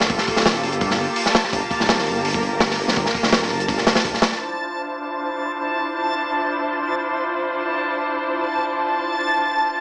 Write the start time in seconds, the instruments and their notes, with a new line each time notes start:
Already playing: string section A#3 F4 G4 A4, synth texture A5
0.01 snare
0.10 detuned saw bass G1, kick, open hi-hat
0.18 snare
0.27 kick, open hi-hat
0.36 detuned saw bass D1, snare
0.46 snare, open hi-hat
0.54 snare
0.63 detuned saw bass G1, open hi-hat
0.72 closed hi-hat
0.81 kick, open hi-hat
0.91 snare
1.00 open hi-hat
1.16 open hi-hat
1.26 snare
1.35 snare, open hi-hat
1.44 snare
1.53 detuned saw bass G1, string section A#4, kick, open hi-hat
1.71 kick, open hi-hat
1.80 detuned saw bass D1, snare
1.89 snare, open hi-hat
1.98 snare
2.07 detuned saw bass G1, open hi-hat
2.25 open hi-hat
2.34 kick
2.43 open hi-hat
2.52 detuned saw bass G1
2.60 snare, open hi-hat
2.71 snare
2.79 open hi-hat
2.88 snare
2.96 detuned saw bass G1, kick, open hi-hat
3.06 snare
3.14 kick, open hi-hat
3.23 detuned saw bass D1, snare
3.32 snare, open hi-hat
3.42 snare
3.50 detuned saw bass G1, open hi-hat
3.60 closed hi-hat
3.68 kick, open hi-hat
3.78 snare
3.87 snare, open hi-hat
3.95 snare, open hi-hat
4.04 detuned saw bass D2, kick, open hi-hat
4.14 snare
4.22 snare, open hi-hat
4.32 snare
4.40 string section D4 E4 F4 C5, synth texture A5